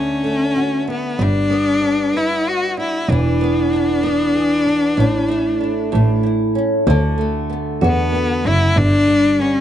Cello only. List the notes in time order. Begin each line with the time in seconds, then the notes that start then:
Already playing: C#4
0.91 B3
1.22 D4
2.16 E4
2.49 F#4
2.80 E4
3.10 D4
7.85 B3
8.47 E4
8.77 D4
9.41 C#4